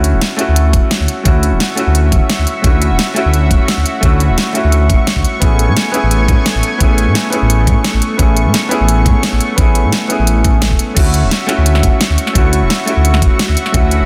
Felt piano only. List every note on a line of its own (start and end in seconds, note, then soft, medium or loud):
0.00 0.35 A3 medium
0.00 0.36 C#4 medium
0.00 0.37 E4 medium
0.00 0.38 F#4 medium
0.37 1.22 A3 loud
0.37 1.23 C#4 medium
0.37 1.24 E4 medium
0.41 1.25 F#4 loud
1.23 1.74 A3 medium
1.23 1.75 C#4 medium
1.23 1.76 E4 medium
1.28 1.77 F#4 medium
1.75 2.60 A3 medium
1.75 2.62 C#4 medium
1.75 2.63 E4 medium
1.80 2.63 F#4 loud
2.62 3.13 A3 medium
2.62 3.14 C#4 medium
2.62 3.15 E4 medium
2.66 3.15 F#4 medium
3.14 3.99 A3 loud
3.14 4.01 C#4 medium
3.14 4.01 E4 medium
3.18 4.02 F#4 loud
4.01 4.51 A3 medium
4.01 4.53 C#4 medium
4.01 4.53 E4 medium
4.05 4.54 F#4 medium
4.53 5.39 A3 medium
4.53 5.39 C#4 medium
4.53 5.40 E4 medium
4.57 5.41 F#4 medium
5.40 5.90 B3 medium
5.40 5.91 C#4 medium
5.40 5.92 E4 medium
5.44 5.93 G#4 medium
5.92 6.77 B3 loud
5.92 6.78 C#4 medium
5.92 6.79 E4 medium
5.96 6.80 G#4 loud
6.78 7.29 B3 medium
6.78 7.30 C#4 medium
6.78 7.31 E4 medium
6.83 7.32 G#4 medium
7.30 8.15 B3 medium
7.30 8.17 C#4 medium
7.30 8.18 E4 medium
7.35 8.18 G#4 medium
8.17 8.67 B3 medium
8.17 8.69 C#4 medium
8.17 8.70 E4 medium
8.21 8.70 G#4 medium
8.69 9.54 B3 loud
8.69 9.55 C#4 medium
8.69 9.56 E4 medium
8.73 9.57 G#4 loud
9.56 10.06 B3 medium
9.56 10.08 C#4 medium
9.56 10.08 E4 medium
9.60 10.09 G#4 medium
10.08 10.94 B3 medium
10.08 10.94 C#4 medium
10.08 10.95 E4 medium
10.12 10.96 G#4 medium
10.95 11.45 A3 medium
10.95 11.46 C#4 medium
10.95 11.47 E4 medium
10.99 11.48 F#4 medium
11.47 12.32 A3 loud
11.47 12.33 C#4 medium
11.47 12.34 E4 medium
11.51 12.34 F#4 loud
12.33 12.84 A3 medium
12.33 12.85 C#4 medium
12.33 12.86 E4 medium
12.38 12.87 F#4 medium
12.86 13.71 A3 medium
12.86 13.72 C#4 medium
12.86 13.73 E4 medium
12.90 13.73 F#4 medium
13.72 14.06 A3 medium
13.72 14.06 C#4 medium
13.72 14.06 E4 medium
13.76 14.06 F#4 medium